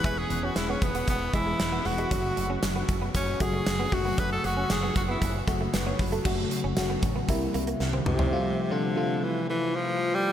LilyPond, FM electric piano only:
<<
  \new Staff \with { instrumentName = "FM electric piano" } { \time 4/4 \key fis \dorian \tempo 4 = 116 r1 | r1 | r2. b'16 cis''8 a'16~ | a'16 r2. r8. |
\key f \major r1 | }
  \new Staff \with { instrumentName = "FM electric piano" } { \clef bass \time 4/4 \key fis \dorian <e gis b gis'>4~ <e gis b gis'>16 r4 r16 <e gis b gis'>8. r16 <e gis b fis'>16 r16 | <cis fis a fis'>4~ <cis fis a fis'>16 r4 r16 <cis fis a fis'>8. r16 <cis fis a fis'>16 r16 | <cis fis a fis'>4~ <cis fis a fis'>16 r4 r16 <cis fis a fis'>8. r8. | <cis fis a fis'>8. r16 <cis fis a fis'>4 <c g bes e'>4. r8 |
\key f \major <c f g a f'>8 r16 <c f g a f'>16 r16 <c f g a f'>4~ <c f g a f'>16 r4. | }
>>